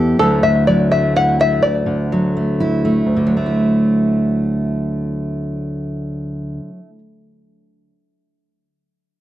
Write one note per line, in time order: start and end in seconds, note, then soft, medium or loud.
0.00 0.15 E2 medium
0.00 0.19 E3 medium
0.00 0.16 B3 soft
0.00 0.17 G4 medium
0.00 0.18 A4 medium
0.19 1.63 D2 medium
0.19 0.43 D3 soft
0.19 0.67 F#3 soft
0.19 0.91 A3 soft
0.19 1.16 E4 medium
0.19 0.44 A4 medium
0.43 1.85 D3 soft
0.43 0.67 E5 medium
0.67 2.11 F#3 soft
0.67 0.91 D5 medium
0.92 1.39 A3 soft
0.92 1.16 E5 medium
1.16 1.66 E4 medium
1.16 1.40 F#5 medium
1.39 2.35 A3 soft
1.39 1.64 E5 medium
1.62 3.05 D2 medium
1.62 2.55 D5 medium
1.86 3.15 D3 soft
2.12 3.25 F#3 soft
2.37 2.84 A3 soft
2.60 3.05 E4 medium
2.85 3.35 A3 soft
3.06 6.59 D2 soft
3.17 6.69 D3 soft
3.27 6.79 F#3 soft
3.37 6.89 A3 soft
3.46 6.98 E4 soft